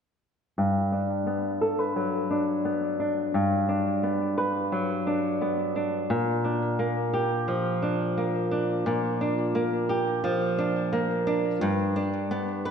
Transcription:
0.58 3.33 G2 medium
0.92 2.30 D4 soft
1.27 2.64 B3 medium
1.61 1.79 A4 medium
1.79 4.36 B4 soft
1.96 4.71 F#3 medium
2.30 2.99 D4 medium
2.65 4.02 B3 soft
3.00 3.68 D4 medium
3.34 6.10 G2 medium
3.69 5.06 D4 medium
4.03 5.40 B3 medium
4.38 6.17 B4 medium
4.72 6.17 F#3 medium
5.07 5.75 D4 medium
5.41 6.17 B3 soft
5.76 6.44 D4 medium
6.10 8.85 A#2 medium
6.44 7.82 D4 soft
6.79 8.16 A#3 medium
7.13 9.89 G4 medium
7.48 10.23 F3 medium
7.82 8.51 D4 medium
8.17 9.54 A#3 medium
8.51 9.21 D4 soft
8.86 11.61 A#2 medium
9.21 10.58 D4 medium
9.55 10.91 A#3 medium
9.89 12.65 G4 medium
10.24 11.69 F3 medium
10.58 11.26 D4 medium
10.93 11.69 A#3 medium
11.27 11.96 D4 medium
11.61 12.71 G2 medium
11.96 12.71 D4 medium
12.31 12.71 B3 medium
12.65 12.71 B4 medium

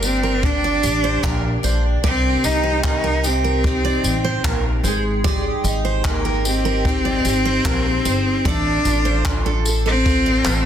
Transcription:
0.00 0.79 G1 medium
0.00 2.04 G2 medium
0.00 1.22 A#3 medium
0.00 0.46 C4 medium
0.00 0.42 D4 medium
0.00 0.83 G4 medium
0.00 tambourine medium
0.23 0.42 A#4 medium
0.43 1.62 D4 medium
0.43 1.64 D4 loud
0.43 kick loud
0.64 0.83 D5 medium
0.83 1.16 A1 medium
0.83 2.04 G4 medium
0.83 tambourine medium
1.04 1.22 C5 medium
1.23 1.56 A#1 medium
1.23 2.83 A#3 medium
1.23 1.42 A#4 medium
1.23 kick loud
1.23 clap loud
1.63 1.96 A#1 medium
1.63 2.11 D4 medium
1.63 1.83 C5 medium
1.63 tambourine medium
2.04 2.37 C2 loud
2.04 4.93 C3 medium
2.04 2.46 C4 loud
2.04 3.23 G4 medium
2.04 2.23 D5 loud
2.04 kick loud
2.43 4.00 C2 medium
2.43 3.64 D#4 medium
2.43 2.84 D#4 medium
2.43 tambourine medium
2.64 2.83 C5 medium
2.84 4.43 A#3 medium
2.84 3.28 D#4 loud
2.84 kick loud
2.84 clap loud
3.04 3.23 A#4 medium
3.24 4.86 C4 medium
3.24 4.04 G4 medium
3.24 tambourine medium
3.44 3.63 A#4 medium
3.64 5.64 D#4 medium
3.64 kick loud
3.85 4.03 D5 medium
4.04 4.37 A1 medium
4.04 5.25 G4 medium
4.04 tambourine medium
4.24 4.43 C5 medium
4.44 4.77 A#1 medium
4.44 4.92 A#3 medium
4.44 4.63 A#4 medium
4.44 kick loud
4.44 clap loud
4.83 5.50 G#1 medium
4.83 5.23 G#3 medium
4.83 5.03 C5 medium
4.83 tambourine medium
5.24 8.45 G#3 medium
5.24 6.44 G4 medium
5.24 5.43 D5 loud
5.24 kick loud
5.64 7.21 G#1 loud
5.64 6.84 D#4 medium
5.64 tambourine medium
5.85 6.04 C5 medium
6.05 6.43 A#3 medium
6.05 7.65 C4 medium
6.05 kick loud
6.05 clap loud
6.25 6.44 A#4 medium
6.45 8.49 C4 loud
6.45 7.24 G4 medium
6.45 tambourine medium
6.65 6.84 A#4 medium
6.85 8.04 D#4 medium
6.85 kick loud
7.05 7.24 D5 medium
7.25 7.58 G#1 medium
7.25 8.46 G4 medium
7.25 tambourine medium
7.45 7.64 C5 medium
7.65 7.98 A#1 medium
7.65 9.25 C4 medium
7.65 7.84 A#4 medium
7.65 kick loud
7.65 clap loud
8.05 8.38 G1 medium
8.05 8.53 D#4 medium
8.05 8.24 C5 medium
8.05 tambourine medium
8.45 8.78 A1 loud
8.45 10.65 A3 medium
8.45 9.47 D4 loud
8.45 9.64 A4 medium
8.45 8.65 D5 loud
8.45 kick loud
8.85 10.42 A1 loud
8.85 10.05 F4 medium
8.85 tambourine medium
9.05 9.24 C5 medium
9.25 10.65 C4 medium
9.25 kick loud
9.25 clap loud
9.46 9.65 A4 medium
9.65 10.44 A4 medium
9.65 tambourine medium
9.86 10.65 C4 loud
9.86 10.05 A4 medium
10.06 10.65 F4 medium
10.06 kick loud
10.26 10.45 D5 medium
10.45 10.65 A1 medium
10.45 10.65 A4 medium
10.45 clap medium
10.45 tambourine medium

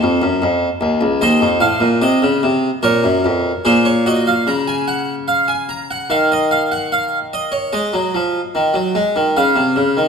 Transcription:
0.00 0.22 F2 medium
0.00 1.19 A4 medium
0.00 1.19 C5 medium
0.22 0.41 F#2 medium
0.42 0.67 F2 medium
0.81 1.01 D#2 medium
1.01 1.21 C#2 medium
1.21 1.42 D#2 medium
1.21 2.81 C5 medium
1.21 1.47 D#5 medium
1.41 1.62 F2 medium
1.60 1.81 A2 medium
1.60 1.86 F5 medium
1.81 2.02 A#2 medium
2.02 2.22 C3 medium
2.02 2.81 D#5 medium
2.22 2.43 C#3 medium
2.43 2.69 C3 medium
2.83 3.04 A#2 medium
2.83 3.63 A#4 medium
2.83 3.63 C#5 medium
3.04 3.24 F#2 medium
3.25 3.50 F2 medium
3.65 4.45 A#2 medium
3.65 3.91 G#4 medium
3.65 3.86 C5 medium
3.85 4.06 C#5 medium
4.06 4.32 F#4 medium
4.06 4.27 D#5 medium
4.27 4.47 F5 medium
4.47 6.07 C#3 soft
4.47 4.68 A#5 medium
4.68 4.88 G#5 medium
4.88 5.13 F#5 medium
5.28 5.49 F5 medium
5.48 5.69 G#5 medium
5.69 5.90 A#5 medium
5.91 6.11 F#5 medium
6.10 7.68 D#3 medium
6.10 6.31 F5 medium
6.32 6.51 D#5 medium
6.51 6.71 F5 medium
6.72 6.91 F#5 medium
6.92 7.17 F5 medium
7.33 7.53 D#5 medium
7.52 7.72 C#5 medium
7.73 7.93 G#3 medium
7.73 9.30 D#5 medium
7.93 8.13 F#3 medium
8.14 8.39 F3 medium
8.55 8.74 D#3 medium
8.74 8.93 F#3 medium
8.95 9.14 G#3 medium
9.16 9.35 D#3 medium
9.37 9.55 C#3 medium
9.37 10.08 F5 medium
9.56 9.74 C3 medium
9.76 9.95 C#3 medium
9.97 10.08 D#3 medium

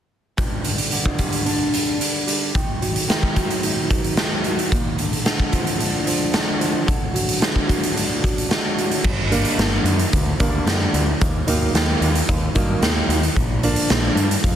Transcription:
0.37 1.73 G2 medium
0.37 kick medium
0.37 closed hi-hat soft
0.64 0.91 D3 medium
0.64 closed hi-hat medium
0.78 closed hi-hat soft
0.91 1.99 D3 medium
0.91 closed hi-hat medium
1.06 kick medium
1.18 1.73 G3 medium
1.18 kick medium
1.18 closed hi-hat medium
1.32 closed hi-hat medium
1.46 2.54 D4 medium
1.46 closed hi-hat soft
1.74 2.26 G3 medium
1.74 closed hi-hat medium
2.00 2.54 D3 medium
2.00 closed hi-hat medium
2.27 2.54 G3 medium
2.27 closed hi-hat soft
2.54 3.07 D#3 medium
2.54 kick medium
2.54 closed hi-hat soft
2.82 3.35 F#3 medium
2.82 closed hi-hat medium
2.96 closed hi-hat soft
3.08 4.17 D#3 medium
3.08 snare medium
3.08 closed hi-hat medium
3.23 kick medium
3.36 3.91 F#3 medium
3.36 kick medium
3.36 closed hi-hat soft
3.50 closed hi-hat soft
3.63 4.72 D#4 medium
3.63 closed hi-hat medium
3.90 4.44 F#3 medium
3.90 kick medium
3.90 closed hi-hat soft
4.04 closed hi-hat medium
4.17 4.72 D#3 medium
4.17 snare medium
4.17 closed hi-hat soft
4.44 4.72 F#3 medium
4.44 closed hi-hat soft
4.59 closed hi-hat soft
4.72 6.08 A#2 medium
4.72 kick medium
4.72 closed hi-hat soft
4.98 5.24 D3 medium
4.98 closed hi-hat soft
5.13 closed hi-hat soft
5.25 6.32 D3 medium
5.25 snare medium
5.25 closed hi-hat medium
5.40 kick medium
5.52 6.06 F3 medium
5.52 kick medium
5.52 closed hi-hat medium
5.67 closed hi-hat soft
5.79 7.93 D4 medium
5.79 closed hi-hat medium
6.07 6.58 F3 medium
6.07 closed hi-hat medium
6.33 6.85 D3 medium
6.33 snare loud
6.33 closed hi-hat medium
6.60 6.88 F3 medium
6.60 closed hi-hat medium
6.86 7.39 D3 medium
6.86 kick medium
6.86 closed hi-hat soft
7.14 7.66 F#3 medium
7.14 closed hi-hat medium
7.29 closed hi-hat medium
7.40 8.48 D3 medium
7.40 snare medium
7.40 closed hi-hat medium
7.56 kick medium
7.67 8.21 F#3 medium
7.67 kick medium
7.67 closed hi-hat medium
7.83 closed hi-hat medium
7.93 9.03 D4 medium
7.93 closed hi-hat medium
8.22 8.76 F#3 medium
8.22 kick medium
8.22 closed hi-hat soft
8.38 closed hi-hat medium
8.49 9.04 D3 medium
8.49 snare loud
8.49 closed hi-hat soft
8.77 9.04 F#3 medium
8.77 closed hi-hat soft
8.91 closed hi-hat soft
9.04 9.43 G1 medium
9.04 kick medium
9.04 crash medium
9.31 9.58 D3 medium
9.31 9.58 G3 medium
9.31 9.58 A#3 medium
9.31 9.59 D4 medium
9.31 closed hi-hat medium
9.45 closed hi-hat medium
9.58 9.78 G1 medium
9.58 9.94 D3 medium
9.58 9.94 G3 medium
9.58 9.94 A#3 medium
9.58 9.95 D4 medium
9.58 snare loud
9.58 closed hi-hat medium
9.84 10.04 F#2 medium
9.84 closed hi-hat medium
9.99 closed hi-hat medium
10.13 10.32 D2 medium
10.13 kick medium
10.13 closed hi-hat medium
10.39 10.59 D2 medium
10.39 10.64 D3 medium
10.39 10.65 G3 medium
10.39 10.66 A#3 medium
10.39 10.66 D4 medium
10.39 kick medium
10.39 closed hi-hat medium
10.66 10.86 F#2 medium
10.66 11.01 D3 medium
10.66 11.02 G3 medium
10.66 11.02 A#3 medium
10.66 snare loud
10.66 closed hi-hat medium
10.94 11.13 D2 medium
10.94 closed hi-hat medium
11.21 11.40 D#2 medium
11.21 kick medium
11.21 closed hi-hat medium
11.47 11.66 D#2 medium
11.47 11.72 D#3 medium
11.47 11.73 F#3 medium
11.47 11.74 A#3 medium
11.47 11.73 D#4 medium
11.47 closed hi-hat medium
11.73 11.93 D#2 medium
11.73 12.09 D#3 medium
11.73 12.09 F#3 medium
11.73 12.10 A#3 medium
11.73 12.10 D#4 medium
11.73 snare loud
11.73 closed hi-hat medium
12.01 12.20 D#2 medium
12.01 closed hi-hat medium
12.15 closed hi-hat medium
12.29 12.48 D#2 medium
12.29 kick medium
12.29 closed hi-hat medium
12.55 12.75 G2 medium
12.55 12.82 D#3 medium
12.55 12.82 F#3 medium
12.55 12.82 A#3 medium
12.55 12.82 D#4 medium
12.55 kick medium
12.55 closed hi-hat soft
12.81 13.01 D#2 medium
12.81 13.18 D#3 medium
12.81 13.18 F#3 medium
12.81 13.18 A#3 medium
12.81 13.18 D#4 medium
12.81 snare loud
12.81 closed hi-hat medium
13.08 13.27 D#2 medium
13.08 closed hi-hat soft
13.23 closed hi-hat soft
13.36 13.74 A#1 medium
13.36 kick medium
13.36 closed hi-hat soft
13.63 13.89 D3 medium
13.63 13.90 F3 medium
13.63 13.90 A#3 medium
13.63 13.90 D4 medium
13.63 closed hi-hat medium
13.76 closed hi-hat medium
13.90 14.09 A#1 medium
13.90 14.25 A#3 medium
13.90 14.26 D4 medium
13.90 snare loud
13.90 closed hi-hat medium
14.15 14.35 G2 medium
14.15 closed hi-hat medium
14.31 closed hi-hat medium
14.44 14.56 F2 medium
14.44 kick medium
14.44 closed hi-hat medium

